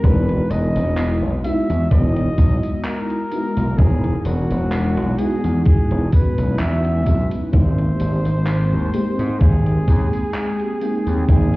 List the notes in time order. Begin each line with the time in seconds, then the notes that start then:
Already playing: G#3
0.03 E1 G#3 B3 D#4 E4 F#4 B4, kick, closed hi-hat, tambourine
0.29 closed hi-hat
0.50 E1 D#5, closed hi-hat, tambourine
0.76 E1, closed hi-hat, tambourine
0.98 clap, closed hi-hat, tambourine
1.22 B1
1.44 G#3 B3 D#4 E4 F#4 E5, closed hi-hat, tambourine
1.70 E2, closed hi-hat, tambourine
1.90 E1 D#5, kick, closed hi-hat, tambourine
2.16 closed hi-hat
2.38 B1, kick, closed hi-hat, tambourine
2.63 closed hi-hat, tambourine
2.85 A#4, clap, closed hi-hat, tambourine
3.10 closed hi-hat
3.31 G#3 B3 D#4 E4 F#4, closed hi-hat, tambourine
3.57 B1, closed hi-hat, tambourine
3.77 E1 G#3 B3 C#4 D#4 E4 F#4 G#4, kick, closed hi-hat, tambourine
4.04 closed hi-hat
4.18 G#4
4.25 E1 F#4, closed hi-hat, tambourine
4.51 E1, closed hi-hat, tambourine
4.72 clap, closed hi-hat, tambourine
4.97 B1, closed hi-hat
5.19 G#3 B3 D#4 E4 F#4 G#4, closed hi-hat, tambourine
5.44 E2, closed hi-hat, tambourine
5.65 G#4, kick, closed hi-hat, tambourine
5.91 E1, closed hi-hat
6.12 B4, kick, closed hi-hat, tambourine
6.38 B1, closed hi-hat, tambourine
6.59 E2 E5, clap, closed hi-hat, tambourine
6.85 closed hi-hat
7.05 B1 G#3 B3 D#4 E4 F#4, kick, closed hi-hat, tambourine
7.31 closed hi-hat, tambourine
7.52 G#1 G#3 A#3 C4 D#4 G4 C5 G5, kick, closed hi-hat, tambourine
7.78 closed hi-hat
8.00 G#1, closed hi-hat, tambourine
8.25 G#1, closed hi-hat, tambourine
8.47 clap, closed hi-hat, tambourine
8.72 D#2
8.93 G#3 A#3 C4 D#4 G4, closed hi-hat, tambourine
9.19 G#2, closed hi-hat, tambourine
9.40 G#1 G#4, kick, closed hi-hat, tambourine
9.66 closed hi-hat
9.88 D#2, kick, closed hi-hat, tambourine
10.13 closed hi-hat, tambourine
10.34 clap, closed hi-hat, tambourine
10.60 closed hi-hat
10.81 G#3 A#3 C4 D#4 G5, closed hi-hat, tambourine
11.07 D#2, closed hi-hat, tambourine
11.27 G#1 G#3 A#3 C4 D#4 G#4 G5, kick, closed hi-hat, tambourine